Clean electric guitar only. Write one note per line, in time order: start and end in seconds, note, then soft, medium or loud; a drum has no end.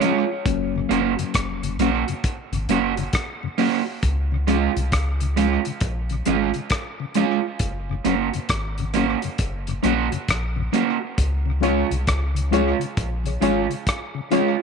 0.00 0.23 G#3 medium
0.00 0.24 C#4 loud
0.00 0.24 F4 loud
0.89 1.12 A#3 medium
0.89 1.13 C#4 medium
0.89 1.13 F#4 medium
1.80 2.02 A#3 medium
1.80 2.03 C#4 medium
1.80 2.03 F#4 loud
2.69 2.92 A#3 medium
2.69 2.92 C#4 medium
2.69 2.93 F#4 loud
2.98 muted clean electric guitar stroke soft
3.58 3.81 A#3 medium
3.58 3.81 C#4 medium
3.58 3.82 F#4 medium
4.47 4.70 G#3 medium
4.47 4.71 C#4 loud
4.47 4.71 F4 medium
5.36 5.59 G#3 medium
5.36 5.60 C#4 medium
5.36 5.60 F4 medium
6.26 6.49 G#3 medium
6.26 6.50 C#4 medium
6.26 6.50 F4 medium
7.15 7.38 G#3 medium
7.15 7.39 C#4 loud
7.15 7.39 F4 loud
8.04 8.28 A#3 medium
8.04 8.28 C#4 medium
8.04 8.28 F#4 medium
8.94 9.17 A#3 medium
8.94 9.18 C#4 loud
8.94 9.18 F#4 medium
9.83 10.06 A#3 medium
9.83 10.07 C#4 loud
9.83 10.07 F#4 loud
10.73 10.96 A#3 medium
10.73 10.97 C#4 medium
10.73 10.97 F#4 medium
11.63 11.86 G#3 medium
11.63 11.86 C#4 loud
11.63 11.87 F4 medium
12.52 12.75 G#3 medium
12.52 12.76 C#4 medium
12.52 12.76 F4 loud
13.41 13.65 G#3 medium
13.41 13.65 C#4 loud
13.41 13.66 F4 medium
14.32 14.54 G#3 medium
14.32 14.55 C#4 medium
14.32 14.55 F4 medium